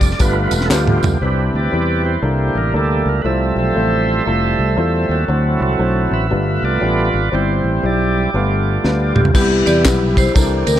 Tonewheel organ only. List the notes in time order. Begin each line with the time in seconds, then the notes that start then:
Already playing: D5
0.21 A3 B3 F4 B4
0.66 A4
0.71 G4
1.06 G4
1.22 C4 D4 E4 G4 B4
1.55 G4 B4 D5
2.05 E4 G4 C5
2.24 G3 A#3 D4 E4
2.58 A#4
2.77 A4
3.09 A#4
3.22 G3 A3 B4 E5
3.27 F3 C4 A4
3.58 A4 C5
5.11 C4 F#4 A4
5.29 F#3 C4 E4
5.62 C4 F#4 A4
6.13 B4 E5
6.31 A3 B3 F4
6.64 F4 B4 D5
7.34 G3 C4 E4 G4 C5
7.86 G4 D5
8.35 A3 B3 F4
9.18 G4
9.35 E3 G3 B3 E4 G4
10.36 D#3 G3 C4 D4 G4
10.42 E3